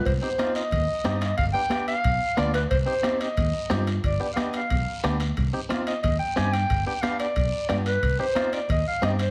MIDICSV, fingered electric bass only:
0, 0, Header, 1, 2, 480
1, 0, Start_track
1, 0, Key_signature, -3, "minor"
1, 0, Tempo, 332042
1, 84, Time_signature, 4, 2, 24, 8
1, 13451, End_track
2, 0, Start_track
2, 0, Title_t, "Fingered electric bass"
2, 0, Program_c, 0, 33
2, 88, Note_on_c, 0, 36, 79
2, 278, Note_off_c, 0, 36, 0
2, 1042, Note_on_c, 0, 39, 82
2, 1234, Note_off_c, 0, 39, 0
2, 1523, Note_on_c, 0, 43, 81
2, 1907, Note_off_c, 0, 43, 0
2, 2005, Note_on_c, 0, 31, 79
2, 2197, Note_off_c, 0, 31, 0
2, 2961, Note_on_c, 0, 35, 84
2, 3154, Note_off_c, 0, 35, 0
2, 3448, Note_on_c, 0, 38, 82
2, 3831, Note_off_c, 0, 38, 0
2, 3920, Note_on_c, 0, 36, 84
2, 4113, Note_off_c, 0, 36, 0
2, 4879, Note_on_c, 0, 39, 82
2, 5073, Note_off_c, 0, 39, 0
2, 5362, Note_on_c, 0, 43, 82
2, 5747, Note_off_c, 0, 43, 0
2, 5838, Note_on_c, 0, 31, 83
2, 6033, Note_off_c, 0, 31, 0
2, 6805, Note_on_c, 0, 35, 81
2, 6997, Note_off_c, 0, 35, 0
2, 7294, Note_on_c, 0, 38, 79
2, 7675, Note_off_c, 0, 38, 0
2, 7771, Note_on_c, 0, 36, 73
2, 7961, Note_off_c, 0, 36, 0
2, 8731, Note_on_c, 0, 39, 88
2, 8921, Note_off_c, 0, 39, 0
2, 9221, Note_on_c, 0, 43, 81
2, 9600, Note_off_c, 0, 43, 0
2, 9690, Note_on_c, 0, 31, 80
2, 9880, Note_off_c, 0, 31, 0
2, 10644, Note_on_c, 0, 35, 83
2, 10837, Note_off_c, 0, 35, 0
2, 11133, Note_on_c, 0, 43, 80
2, 11515, Note_off_c, 0, 43, 0
2, 11602, Note_on_c, 0, 36, 82
2, 11796, Note_off_c, 0, 36, 0
2, 12569, Note_on_c, 0, 39, 87
2, 12760, Note_off_c, 0, 39, 0
2, 13050, Note_on_c, 0, 43, 84
2, 13433, Note_off_c, 0, 43, 0
2, 13451, End_track
0, 0, End_of_file